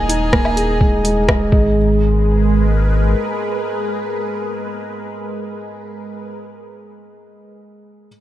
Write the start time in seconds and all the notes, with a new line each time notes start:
Already playing: D#1 G#3 A#3 D#4 G#4 D#5 G#5 A#5
0.09 D#4, closed hi-hat
0.33 A#3, kick, cross-stick
0.45 low woodblock
0.56 G#4, closed hi-hat
0.80 G#3, kick
1.04 G#3, closed hi-hat
1.28 G#3, kick, cross-stick, low woodblock
1.52 G#1 G#3, kick
1.60 G#4
1.90 A#4
1.98 B4